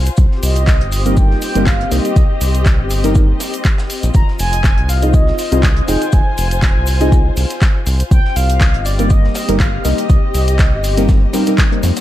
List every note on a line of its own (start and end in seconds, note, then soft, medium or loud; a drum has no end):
0.00 1.77 F4 medium
0.00 1.77 C5 medium
0.00 0.18 G#5 medium
0.06 closed hi-hat medium
0.06 shaker medium
0.17 0.27 C2 loud
0.17 5.10 C4 medium
0.17 kick loud
0.17 closed hi-hat medium
0.17 shaker medium
0.17 shaker soft
0.31 4.15 G4 loud
0.31 snare soft
0.43 0.82 C2 medium
0.43 1.19 D#5 loud
0.43 open hi-hat loud
0.43 shaker loud
0.43 shaker medium
0.55 closed hi-hat soft
0.55 closed hi-hat medium
0.55 shaker medium
0.67 5.74 D#5 medium
0.67 kick loud
0.67 snare loud
0.67 clap loud
0.67 closed hi-hat medium
0.67 shaker medium
0.67 shaker soft
0.81 1.35 G1 medium
0.81 closed hi-hat soft
0.92 open hi-hat loud
0.92 shaker medium
0.92 shaker loud
1.05 1.52 G3 medium
1.05 1.52 A#3 medium
1.05 1.52 C4 medium
1.05 1.52 D#4 medium
1.05 1.52 A#4 medium
1.05 closed hi-hat medium
1.05 shaker medium
1.17 1.41 G5 loud
1.17 kick loud
1.17 closed hi-hat soft
1.17 shaker soft
1.17 shaker medium
1.31 snare soft
1.42 1.68 G5 loud
1.42 open hi-hat loud
1.42 shaker loud
1.42 shaker medium
1.55 1.85 G1 loud
1.55 1.65 G3 loud
1.55 1.65 A#3 loud
1.55 1.65 C4 loud
1.55 1.65 D#4 medium
1.55 1.65 A#4 loud
1.55 closed hi-hat medium
1.55 shaker medium
1.66 1.93 F5 loud
1.66 kick loud
1.66 snare loud
1.66 clap loud
1.66 closed hi-hat medium
1.66 shaker soft
1.66 shaker medium
1.81 closed hi-hat soft
1.91 2.00 C2 medium
1.91 2.09 G3 medium
1.91 2.09 A#3 medium
1.91 2.09 C4 medium
1.91 2.09 D#4 medium
1.91 2.09 A#4 medium
1.91 3.40 D#5 loud
1.91 open hi-hat loud
1.91 shaker medium
1.91 shaker loud
2.05 closed hi-hat medium
2.05 shaker medium
2.16 2.25 C2 loud
2.16 kick loud
2.16 closed hi-hat medium
2.16 shaker medium
2.16 shaker soft
2.41 2.81 C2 medium
2.41 open hi-hat loud
2.41 shaker loud
2.41 shaker medium
2.55 closed hi-hat medium
2.55 shaker medium
2.65 kick loud
2.65 snare loud
2.65 clap loud
2.65 closed hi-hat medium
2.65 shaker medium
2.65 shaker soft
2.79 3.34 G1 medium
2.90 open hi-hat loud
2.90 shaker medium
3.04 3.13 G3 loud
3.04 3.14 A#3 medium
3.04 3.14 C4 medium
3.04 3.14 D#4 medium
3.04 3.14 A#4 loud
3.04 snare medium
3.04 closed hi-hat medium
3.04 shaker medium
3.15 3.27 A#3 medium
3.15 3.27 C4 medium
3.15 3.27 D#4 medium
3.15 3.27 A#4 medium
3.15 kick loud
3.15 closed hi-hat soft
3.15 shaker medium
3.15 shaker soft
3.40 snare loud
3.40 open hi-hat loud
3.40 shaker medium
3.40 shaker loud
3.54 closed hi-hat medium
3.54 closed hi-hat soft
3.54 shaker medium
3.65 kick loud
3.65 clap loud
3.65 closed hi-hat medium
3.65 shaker soft
3.65 shaker medium
3.78 snare loud
3.78 shaker medium
3.90 closed hi-hat soft
3.90 open hi-hat medium
3.90 shaker medium
4.03 4.11 A#1 medium
4.03 closed hi-hat medium
4.03 shaker soft
4.03 shaker medium
4.14 4.23 F1 loud
4.14 9.56 F4 medium
4.14 4.26 A#5 loud
4.14 kick loud
4.14 closed hi-hat medium
4.14 shaker medium
4.14 shaker soft
4.28 snare soft
4.39 4.79 F1 medium
4.39 4.91 G#5 loud
4.39 open hi-hat loud
4.39 shaker medium
4.53 closed hi-hat medium
4.53 closed hi-hat soft
4.53 shaker medium
4.63 kick loud
4.63 snare loud
4.63 clap loud
4.63 closed hi-hat soft
4.63 shaker soft
4.63 shaker medium
4.78 5.32 C2 medium
4.78 8.85 C5 medium
4.78 closed hi-hat soft
4.89 5.15 F5 loud
4.89 open hi-hat medium
4.89 shaker loud
4.89 shaker medium
5.02 5.49 C4 medium
5.02 5.49 D#4 medium
5.02 5.49 F4 medium
5.02 5.49 G#4 medium
5.02 5.49 D#5 loud
5.02 closed hi-hat medium
5.02 shaker medium
5.14 5.90 D#5 loud
5.14 kick loud
5.14 closed hi-hat soft
5.14 shaker loud
5.14 shaker soft
5.27 snare medium
5.38 open hi-hat loud
5.38 shaker loud
5.38 shaker medium
5.52 5.82 C2 loud
5.52 5.61 C4 loud
5.52 5.61 D#4 medium
5.52 5.62 F4 loud
5.52 5.62 G#4 loud
5.52 5.62 D#5 loud
5.52 8.11 G#5 medium
5.52 closed hi-hat medium
5.52 shaker medium
5.63 kick loud
5.63 snare loud
5.63 clap loud
5.63 closed hi-hat medium
5.63 shaker medium
5.63 shaker soft
5.77 closed hi-hat soft
5.88 5.97 F1 medium
5.88 6.05 C4 medium
5.88 6.05 D#4 medium
5.88 6.06 F4 medium
5.88 6.06 G#4 medium
5.88 6.06 D#5 medium
5.88 6.15 G5 loud
5.88 open hi-hat medium
5.88 shaker medium
6.02 closed hi-hat medium
6.02 shaker soft
6.12 6.22 F1 loud
6.12 6.62 G#5 loud
6.12 kick loud
6.12 closed hi-hat medium
6.12 shaker medium
6.12 shaker soft
6.38 6.77 F1 medium
6.38 open hi-hat loud
6.38 shaker medium
6.51 closed hi-hat medium
6.51 shaker soft
6.62 7.58 G#5 loud
6.62 kick loud
6.62 snare loud
6.62 clap loud
6.62 closed hi-hat medium
6.62 shaker medium
6.62 shaker soft
6.76 7.30 C2 medium
6.86 open hi-hat medium
6.86 shaker medium
7.00 7.10 C4 loud
7.00 7.10 D#4 medium
7.00 7.10 F4 medium
7.00 7.10 G#4 medium
7.00 7.11 D#5 loud
7.00 snare medium
7.00 closed hi-hat medium
7.00 shaker soft
7.12 7.23 C4 medium
7.12 7.23 D#4 medium
7.12 7.23 F4 medium
7.12 7.24 G#4 medium
7.12 7.24 D#5 medium
7.12 kick loud
7.12 closed hi-hat soft
7.12 shaker soft
7.12 shaker loud
7.36 7.46 C2 medium
7.36 open hi-hat loud
7.36 shaker medium
7.50 snare soft
7.50 closed hi-hat medium
7.50 shaker soft
7.62 kick loud
7.62 snare loud
7.62 clap loud
7.62 closed hi-hat medium
7.62 shaker loud
7.62 shaker soft
7.86 8.03 C2 medium
7.86 open hi-hat medium
7.86 shaker medium
8.00 closed hi-hat medium
8.00 shaker soft
8.11 8.20 C2 loud
8.11 12.01 C4 medium
8.11 8.38 G5 loud
8.11 kick loud
8.11 closed hi-hat medium
8.11 shaker soft
8.11 shaker medium
8.25 12.01 G4 medium
8.25 snare soft
8.36 8.76 C2 medium
8.36 8.85 F5 loud
8.36 open hi-hat loud
8.36 shaker medium
8.50 12.01 D#5 medium
8.50 closed hi-hat medium
8.50 closed hi-hat soft
8.50 shaker soft
8.60 kick loud
8.60 snare loud
8.60 clap loud
8.60 closed hi-hat medium
8.60 shaker medium
8.60 shaker soft
8.74 9.29 G1 medium
8.74 closed hi-hat soft
8.85 9.12 D5 loud
8.85 open hi-hat medium
8.85 shaker medium
8.85 shaker loud
8.99 9.45 G3 medium
8.99 9.45 A#3 medium
8.99 9.45 C4 medium
8.99 9.46 D#4 medium
8.99 9.46 A#4 loud
8.99 closed hi-hat medium
8.99 shaker soft
9.10 9.62 D#5 loud
9.10 kick loud
9.10 closed hi-hat medium
9.10 shaker medium
9.10 shaker soft
9.24 snare soft
9.35 snare loud
9.35 open hi-hat loud
9.35 shaker medium
9.48 9.78 G1 loud
9.48 9.58 G3 loud
9.48 9.58 A#3 loud
9.48 9.58 C4 loud
9.48 9.58 D#4 medium
9.48 9.58 A#4 loud
9.48 closed hi-hat medium
9.48 closed hi-hat soft
9.48 shaker medium
9.60 9.86 F5 loud
9.60 kick loud
9.60 clap loud
9.60 closed hi-hat medium
9.60 shaker medium
9.60 shaker soft
9.84 9.93 C2 medium
9.84 10.02 G3 medium
9.84 10.02 A#3 medium
9.84 10.02 C4 medium
9.84 10.02 D#4 medium
9.84 10.02 A#4 medium
9.84 11.58 D#5 loud
9.84 snare loud
9.84 open hi-hat medium
9.84 shaker medium
9.98 closed hi-hat medium
9.98 closed hi-hat soft
9.98 shaker soft
10.09 10.18 C2 loud
10.09 kick loud
10.09 closed hi-hat medium
10.09 shaker medium
10.09 shaker soft
10.34 10.74 C2 medium
10.34 open hi-hat loud
10.34 shaker medium
10.48 closed hi-hat medium
10.48 shaker soft
10.59 kick loud
10.59 snare loud
10.59 clap loud
10.59 closed hi-hat medium
10.59 shaker medium
10.59 shaker soft
10.73 11.27 G1 medium
10.84 open hi-hat loud
10.84 shaker medium
10.97 11.07 G3 loud
10.97 11.07 A#3 medium
10.97 11.07 C4 medium
10.97 11.07 D#4 medium
10.97 11.07 A#4 loud
10.97 snare medium
10.97 closed hi-hat medium
10.97 shaker medium
11.08 11.20 G3 medium
11.08 11.20 A#3 medium
11.08 11.20 C4 medium
11.08 11.20 D#4 medium
11.08 11.20 A#4 medium
11.08 kick loud
11.08 snare loud
11.08 closed hi-hat medium
11.08 shaker soft
11.08 shaker medium
11.33 11.45 G3 loud
11.33 11.45 A#3 medium
11.33 11.45 C4 medium
11.33 11.45 D#4 medium
11.33 11.45 A#4 loud
11.33 snare loud
11.33 open hi-hat loud
11.33 shaker medium
11.46 11.63 G3 loud
11.46 11.63 A#3 medium
11.46 11.63 C4 medium
11.46 11.63 D#4 medium
11.46 11.63 A#4 loud
11.46 snare soft
11.46 closed hi-hat medium
11.46 shaker medium
11.58 kick loud
11.58 snare loud
11.58 clap loud
11.58 closed hi-hat medium
11.58 shaker medium
11.58 shaker soft
11.71 12.01 G3 medium
11.71 12.01 A#3 medium
11.71 12.01 C4 medium
11.71 12.01 D#4 medium
11.71 12.01 A#4 medium
11.71 closed hi-hat soft
11.83 11.92 F2 medium
11.83 snare loud
11.83 open hi-hat medium
11.83 shaker medium
11.96 snare loud
11.96 closed hi-hat medium
11.96 shaker medium